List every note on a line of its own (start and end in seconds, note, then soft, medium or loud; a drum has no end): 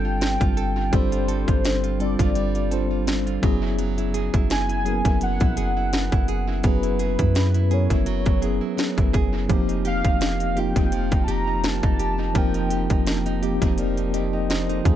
0.00 0.38 G1 loud
0.00 0.91 G3 loud
0.00 0.91 G3 medium
0.00 0.20 C4 medium
0.00 0.92 C4 loud
0.00 0.93 D4 loud
0.00 0.93 F4 loud
0.00 0.56 A4 medium
0.00 0.94 A4 loud
0.00 0.97 G5 loud
0.05 0.39 F4 medium
0.21 1.63 C4 medium
0.21 snare loud
0.21 closed hi-hat medium
0.40 0.91 G1 loud
0.40 0.75 F4 medium
0.40 kick medium
0.40 closed hi-hat soft
0.57 1.27 A4 medium
0.57 closed hi-hat medium
0.76 1.11 F4 medium
0.91 1.46 G1 loud
0.91 1.60 G3 medium
0.91 2.35 G3 medium
0.91 1.60 C4 medium
0.91 1.61 D4 medium
0.91 1.61 F4 medium
0.91 1.62 A4 loud
0.91 2.01 C5 loud
0.91 kick loud
0.91 closed hi-hat medium
1.12 1.46 F4 medium
1.12 closed hi-hat medium
1.28 1.99 A4 medium
1.28 closed hi-hat medium
1.48 2.16 G1 loud
1.48 1.82 F4 medium
1.48 kick medium
1.48 closed hi-hat medium
1.64 3.06 C4 medium
1.64 snare loud
1.64 closed hi-hat medium
1.83 2.18 F4 medium
1.83 closed hi-hat soft
1.99 2.45 G3 medium
1.99 2.46 C4 medium
1.99 2.46 D4 medium
1.99 2.46 F4 medium
1.99 2.70 A4 medium
1.99 2.47 A4 medium
1.99 3.04 D5 medium
1.99 closed hi-hat medium
2.19 3.39 G1 loud
2.19 2.54 F4 medium
2.19 kick medium
2.19 closed hi-hat medium
2.35 3.43 G3 medium
2.35 closed hi-hat medium
2.55 2.90 F4 medium
2.55 closed hi-hat soft
2.70 3.39 G3 medium
2.70 3.39 C4 medium
2.70 3.39 D4 medium
2.70 3.40 F4 medium
2.70 3.50 A4 medium
2.70 3.40 C5 medium
2.70 closed hi-hat medium
2.91 3.25 F4 medium
3.07 3.50 C4 medium
3.07 snare loud
3.07 closed hi-hat medium
3.27 3.50 F4 medium
3.27 closed hi-hat soft
3.42 4.30 F#1 loud
3.42 4.57 F#3 medium
3.42 3.77 F#3 medium
3.42 4.57 B3 medium
3.42 4.58 C#4 loud
3.42 4.58 E4 medium
3.42 4.59 G#4 loud
3.42 kick loud
3.42 closed hi-hat medium
3.62 3.97 E4 medium
3.79 5.20 F#3 medium
3.79 closed hi-hat medium
3.98 4.32 E4 medium
3.98 closed hi-hat medium
4.14 4.84 G#4 medium
4.14 closed hi-hat medium
4.34 5.02 F#1 medium
4.34 4.68 E4 medium
4.34 kick medium
4.34 closed hi-hat medium
4.50 5.92 B3 medium
4.50 5.18 G#5 loud
4.50 snare loud
4.50 closed hi-hat medium
4.69 5.04 E4 medium
4.69 closed hi-hat medium
4.84 5.77 F#3 medium
4.84 4.92 A#3 medium
4.84 5.77 C#4 medium
4.84 5.78 E4 medium
4.84 5.56 G#4 medium
4.84 5.78 A#4 medium
4.84 closed hi-hat medium
4.92 5.80 B3 medium
5.05 5.39 F#1 loud
5.05 5.40 E4 medium
5.05 kick medium
5.05 closed hi-hat medium
5.21 6.63 F#3 medium
5.21 6.68 F#5 loud
5.21 closed hi-hat medium
5.40 5.56 A#1 loud
5.40 5.76 E4 medium
5.40 kick loud
5.40 closed hi-hat soft
5.57 6.10 F#1 loud
5.57 6.27 G#4 medium
5.57 closed hi-hat medium
5.77 6.11 E4 medium
5.93 7.34 B3 medium
5.93 snare loud
5.93 closed hi-hat medium
6.12 6.62 F#1 loud
6.12 6.46 E4 medium
6.12 kick medium
6.12 closed hi-hat soft
6.28 6.98 G#4 medium
6.28 closed hi-hat medium
6.48 6.82 E4 medium
6.63 7.17 F#1 loud
6.63 7.31 F#3 medium
6.63 8.05 F#3 medium
6.63 7.32 B3 medium
6.63 7.32 C#4 medium
6.63 7.33 E4 medium
6.63 7.33 G#4 loud
6.63 7.75 B4 loud
6.63 kick loud
6.63 closed hi-hat medium
6.83 7.18 E4 medium
6.83 closed hi-hat medium
6.99 7.70 G#4 medium
6.99 closed hi-hat medium
7.19 7.88 F#2 loud
7.19 7.53 E4 medium
7.19 kick medium
7.19 closed hi-hat medium
7.35 8.76 B3 medium
7.35 snare loud
7.35 closed hi-hat medium
7.54 7.89 E4 medium
7.54 closed hi-hat medium
7.70 8.16 F#3 medium
7.70 8.17 B3 medium
7.70 8.17 C#4 medium
7.70 8.18 E4 medium
7.70 8.41 G#4 medium
7.70 8.18 A#4 medium
7.70 8.79 C#5 loud
7.70 closed hi-hat soft
7.90 8.25 F#1 loud
7.90 8.24 E4 medium
7.90 kick medium
7.90 closed hi-hat medium
8.06 9.49 F#3 medium
8.06 closed hi-hat medium
8.26 8.60 F#1 loud
8.26 8.60 E4 medium
8.26 kick medium
8.26 closed hi-hat soft
8.41 9.10 F#3 medium
8.41 9.10 B3 medium
8.41 9.11 C#4 medium
8.41 9.11 E4 medium
8.41 9.12 G#4 medium
8.41 9.11 G#4 medium
8.41 closed hi-hat medium
8.61 8.96 E4 medium
8.77 9.57 B3 medium
8.77 snare loud
8.77 closed hi-hat medium
8.97 9.48 F#1 loud
8.97 9.31 E4 medium
8.97 kick loud
8.97 closed hi-hat soft
9.13 9.57 G#4 medium
9.13 kick loud
9.13 closed hi-hat medium
9.33 9.57 E4 medium
9.48 10.02 F1 loud
9.48 10.17 F3 loud
9.48 10.92 F3 medium
9.48 9.56 A3 medium
9.48 10.18 C4 loud
9.48 10.18 D#4 loud
9.48 10.19 G4 loud
9.48 kick loud
9.48 closed hi-hat medium
9.55 10.21 A#3 loud
9.69 10.04 D#4 medium
9.69 closed hi-hat medium
9.85 10.55 G4 medium
9.85 10.61 F5 medium
9.85 closed hi-hat medium
10.04 10.73 F1 loud
10.04 10.40 D#4 medium
10.04 kick medium
10.04 closed hi-hat medium
10.21 11.64 A#3 medium
10.21 snare loud
10.21 closed hi-hat medium
10.40 10.75 D#4 medium
10.40 closed hi-hat soft
10.55 11.48 F3 medium
10.55 11.48 A#3 medium
10.55 11.48 C4 medium
10.55 11.49 D#4 medium
10.55 11.49 F4 medium
10.55 11.27 G4 medium
10.55 closed hi-hat medium
10.60 11.23 G5 loud
10.76 11.10 F1 loud
10.76 11.11 D#4 medium
10.76 kick medium
10.76 closed hi-hat medium
10.92 12.35 F3 medium
10.92 closed hi-hat medium
11.12 11.28 F1 loud
11.12 11.47 D#4 medium
11.12 kick loud
11.12 closed hi-hat soft
11.24 11.98 G4 medium
11.24 11.32 A5 medium
11.24 closed hi-hat medium
11.28 11.81 F1 loud
11.28 11.69 A#5 loud
11.47 11.82 D#4 medium
11.64 13.07 A#3 medium
11.64 12.39 A5 loud
11.64 snare loud
11.64 closed hi-hat medium
11.83 12.33 F1 loud
11.83 12.19 D#4 medium
11.83 kick medium
11.83 closed hi-hat soft
11.99 12.70 G4 medium
11.99 closed hi-hat medium
12.19 12.54 D#4 medium
12.33 12.88 F1 loud
12.33 13.02 F3 medium
12.33 13.78 F3 medium
12.33 13.03 A#3 medium
12.33 13.03 C4 medium
12.33 13.04 D#4 medium
12.33 13.04 A#4 loud
12.33 kick loud
12.33 closed hi-hat medium
12.38 13.08 G5 loud
12.54 12.90 D#4 medium
12.54 closed hi-hat medium
12.70 13.41 G4 medium
12.70 closed hi-hat medium
12.90 13.59 F1 loud
12.90 13.26 D#4 medium
12.90 kick medium
12.90 closed hi-hat medium
13.07 14.49 A#3 medium
13.07 snare loud
13.07 closed hi-hat medium
13.26 13.61 D#4 medium
13.26 closed hi-hat medium
13.41 13.88 F3 medium
13.41 13.88 A#3 medium
13.41 13.88 C4 medium
13.41 13.89 D#4 medium
13.41 14.13 G4 medium
13.41 13.89 G4 loud
13.41 closed hi-hat soft
13.62 14.81 F1 loud
13.62 13.97 D#4 medium
13.62 kick medium
13.62 closed hi-hat medium
13.78 14.96 F3 medium
13.78 14.13 A#4 medium
13.78 14.12 D5 medium
13.78 closed hi-hat medium
13.97 14.33 D#4 medium
13.97 closed hi-hat soft
14.14 14.93 G4 medium
14.14 14.33 C5 medium
14.14 14.32 D#5 medium
14.14 closed hi-hat medium
14.33 14.69 D#4 medium
14.33 14.48 D#5 medium
14.33 14.49 G5 medium
14.50 14.96 A#3 medium
14.50 14.68 C5 medium
14.50 14.68 D#5 medium
14.50 snare loud
14.50 closed hi-hat medium
14.69 14.96 D#4 medium
14.69 14.96 A4 medium
14.69 14.96 C5 medium
14.69 closed hi-hat soft
14.84 14.96 D#2 loud
14.84 14.96 D#3 medium
14.84 14.96 F3 loud
14.84 14.96 A#3 medium
14.84 14.96 C#4 medium
14.84 14.96 D#4 medium
14.84 14.96 G#4 loud
14.84 kick loud
14.84 closed hi-hat medium